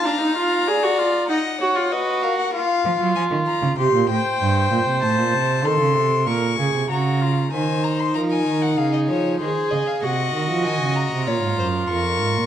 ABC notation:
X:1
M:4/4
L:1/16
Q:1/4=96
K:Ebm
V:1 name="Violin"
b8 g4 e2 f g | f4 a2 b2 =c'2 =g6 | =a4 =c'4 d'4 b4 | a2 b =c' b a2 g f e d2 =c2 e f |
g4 a2 b6 d'4 |]
V:2 name="Violin"
f4 =d4 e2 _d2 c2 B2 | z16 | z16 | =c4 B4 A4 A4 |
e8 d2 =c2 B4 |]
V:3 name="Viola"
=D E F2 A G F2 E2 G F G4 | F8 =G2 =c6- | =c4 =A4 B2 _A2 G2 F2 | E12 A4 |
G8 F8 |]
V:4 name="Cello" clef=bass
z16 | z2 F, G, F, E,2 D, =C, B,, =A,,2 =G,,2 B,, C, | =A,, B,, =C,2 E, D, C,2 B,,2 D, C, D,4 | E,4 F,2 E,2 D,2 F,2 E,2 D,2 |
=C,2 E, F, E, D,2 C, B,, A,, G,,2 F,,2 A,, B,, |]